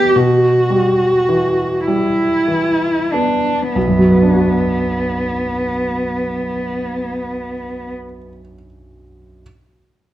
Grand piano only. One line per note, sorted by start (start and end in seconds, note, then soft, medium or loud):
0.00 0.11 B2 soft
0.00 0.18 A3 soft
0.00 0.15 B3 soft
0.00 0.18 D#4 soft
0.16 3.72 B2 soft
0.70 1.63 G3 soft
1.29 2.24 E3 soft
1.88 2.87 G3 soft
2.48 3.52 E3 soft
3.14 3.76 B3 soft
3.75 8.05 B1 soft
3.88 8.18 F#2 soft
3.99 8.29 F#3 soft
4.11 8.41 B3 soft
4.22 8.52 D4 soft
4.34 8.64 F#4 soft